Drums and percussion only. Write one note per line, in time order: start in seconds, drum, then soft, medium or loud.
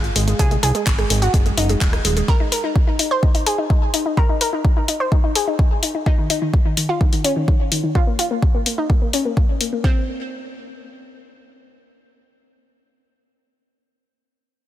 0.04 closed hi-hat soft
0.16 open hi-hat loud
0.28 closed hi-hat soft
0.39 kick loud
0.39 closed hi-hat medium
0.51 closed hi-hat soft
0.63 open hi-hat loud
0.75 closed hi-hat soft
0.86 kick loud
0.86 clap loud
0.86 closed hi-hat medium
0.99 cross-stick medium
0.99 closed hi-hat soft
1.10 open hi-hat loud
1.22 closed hi-hat soft
1.34 kick loud
1.34 closed hi-hat medium
1.46 closed hi-hat soft
1.58 open hi-hat loud
1.69 closed hi-hat soft
1.81 kick loud
1.81 clap loud
1.81 closed hi-hat medium
1.93 cross-stick medium
1.93 closed hi-hat soft
2.05 open hi-hat loud
2.17 closed hi-hat soft
2.28 kick loud
2.52 open hi-hat loud
2.76 kick loud
2.99 open hi-hat loud
3.23 kick loud
3.35 open hi-hat medium
3.47 open hi-hat loud
3.70 kick loud
3.94 open hi-hat loud
4.17 kick loud
4.41 open hi-hat medium
4.65 kick loud
4.88 open hi-hat loud
5.12 kick loud
5.35 open hi-hat loud
5.59 kick loud
5.83 open hi-hat loud
6.06 kick loud
6.30 open hi-hat medium
6.54 kick loud
6.77 open hi-hat medium
7.01 kick loud
7.13 open hi-hat medium
7.24 open hi-hat loud
7.48 kick loud
7.72 open hi-hat loud
7.95 kick loud
8.19 open hi-hat medium
8.42 kick loud
8.66 open hi-hat loud
8.90 kick loud
9.13 open hi-hat loud
9.37 kick loud
9.61 open hi-hat loud
9.84 kick loud